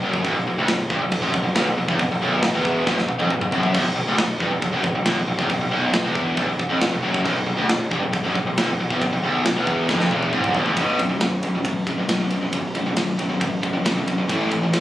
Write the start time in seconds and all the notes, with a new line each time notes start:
0.02 F#1 F#2
0.14 kick
0.24 B0 B1, kick, crash
0.35 B0 B1
0.46 B0 B1
0.57 D1 D2
0.68 B0 B1, snare, crash
0.90 G1 G2, kick
1.01 B0 B1
1.12 B0 B1, kick, crash
1.22 F#1 F#2
1.34 B0 B1, kick
1.44 B0 B1
1.55 B0 B1, snare, crash
1.66 B0 B1
1.77 B0 B1
1.89 E1 E2, kick
1.99 B0 B1, kick, crash
2.11 B0 B1
2.21 B0 B1
2.43 B0 B1, snare, crash
2.54 E1 E2
2.65 kick
2.86 B0 B1, kick, snare
2.97 B0 B1, snare
3.08 muted distorted electric guitar stroke, muted picked electric bass stroke, high tom
3.19 F1 F2, high tom
3.30 B0 B1, mid tom
3.41 B0 B1, mid tom
3.52 F#1 F#2, floor tom
3.63 floor tom
3.74 B0 B1, kick, crash
3.85 B0 B1
3.95 B0 B1
4.08 D1 D2
4.18 B0 B1, snare, crash
4.40 G1 G2, kick
4.51 B0 B1
4.62 B0 B1, kick, crash
4.73 F#1 F#2
4.84 B0 B1, kick
4.95 B0 B1
5.05 B0 B1, snare, crash
5.17 B0 B1
5.28 B0 B1
5.39 E1 E2, kick
5.50 B0 B1, kick, crash
5.61 B0 B1
5.71 B0 B1
5.93 B0 B1, snare, crash
6.04 E1 E2
6.15 kick
6.37 B0 B1, kick, crash
6.48 B0 B1
6.59 muted distorted electric guitar stroke, muted picked electric bass stroke, kick
6.70 F1 F2
6.81 B0 B1, snare, crash
6.92 B0 B1
7.03 F#1 F#2
7.14 kick
7.25 B0 B1, kick, crash
7.36 B0 B1
7.47 B0 B1
7.57 D1 D2
7.69 B0 B1, snare, crash
7.91 G1 G2, kick
8.02 B0 B1
8.12 B0 B1, kick, crash
8.24 F#1 F#2
8.35 B0 B1, kick
8.47 B0 B1
8.58 B0 B1, snare, crash
8.69 B0 B1
8.80 B0 B1
8.90 E1 E2, kick
9.01 B0 B1, kick, crash
9.12 B0 B1
9.23 B0 B1
9.45 B0 B1, snare, crash
9.55 E1 E2
9.67 kick
9.89 F1 F2, kick, snare
10.00 snare
10.10 E1 E2, high tom
10.23 high tom
10.32 C1 C2, mid tom
10.44 mid tom
10.54 B0 B1, floor tom
10.65 D1 D2, floor tom
10.77 B0 B1 F#2 B2, kick, ride
10.98 B0 B1 F#2, ride
11.10 B1 F#2
11.21 B0 B1 F#2, snare, ride
11.43 B0 B1 F#2, ride
11.55 B1 F#2
11.65 A1 B1 F#2, kick, ride
11.87 B0 B1 F#2, kick, ride
11.98 B1 F#2
12.08 B1 F#2, snare, ride
12.20 B1 F#2
12.30 B0 B1 F#2, ride
12.42 B1 F#2
12.53 B0 B1 F#2, kick, ride
12.75 B0 B1 F#2, ride
12.86 B1 F#2
12.97 B0 B1 F#2, snare, ride
13.19 B0 B1 F#2, ride
13.30 B1 F#2
13.41 A1 B1 F#2, kick, ride
13.63 B0 B1 F#2, kick, ride
13.74 B1 F#2
13.85 B1 F#2, snare, ride
13.97 B1 F#2
14.07 B0 B1 F#2, ride
14.18 B1 F#2
14.29 A1 A2 E3 A3, kick, ride
14.51 A1 A2 E3, ride
14.62 A2 E3
14.73 A1 A2 E3, snare, ride